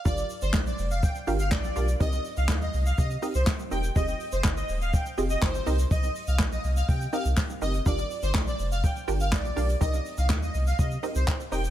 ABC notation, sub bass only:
X:1
M:4/4
L:1/16
Q:1/4=123
K:Cm
V:1 name="Sub bass" clef=bass
G,,,2 z G,,, B,,,2 F,,,3 z G,,,2 B,,,2 =B,,,2 | C,,2 z C,, E,,2 C,,2 C,2 z C,, z2 =E,,,2 | F,,,2 z F,,, G,,,2 E,,,3 z F,,,2 G,,,2 C,,2 | C,,2 z C,, B,,,2 C,,2 C,2 z C,, z2 ^F,,,2 |
G,,,2 z G,,, B,,,2 F,,,3 z G,,,2 B,,,2 =B,,,2 | C,,2 z C,, E,,2 C,,2 C,2 z C,, z2 =E,,,2 |]